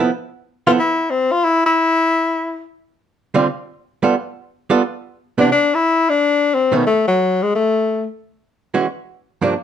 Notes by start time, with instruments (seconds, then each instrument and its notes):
0.00 hollow-body jazz guitar A4
0.67 hollow-body jazz guitar F3 B3 E4 A4, tenor saxophone F4
0.79 tenor saxophone E4
1.10 tenor saxophone C4
1.32 tenor saxophone F4
1.44 tenor saxophone E4
1.66 tenor saxophone E4
3.34 hollow-body jazz guitar D3 G3 C4 F4
4.03 hollow-body jazz guitar G3 B3 F4 A4
4.70 hollow-body jazz guitar G3 B3 F4 A4
5.38 hollow-body jazz guitar C3 E3 B3 D4, tenor saxophone D4
5.52 tenor saxophone D4
5.75 tenor saxophone E4
6.10 tenor saxophone D4
6.55 tenor saxophone C4
6.72 hollow-body jazz guitar B2 D#3 A3 C#4
6.77 tenor saxophone B3
6.87 tenor saxophone A3
7.08 tenor saxophone F#3
7.42 tenor saxophone G#3
7.55 tenor saxophone A3
8.74 hollow-body jazz guitar E3 G#3 C#4 F#4
9.41 hollow-body jazz guitar G2 F3 A#3 D4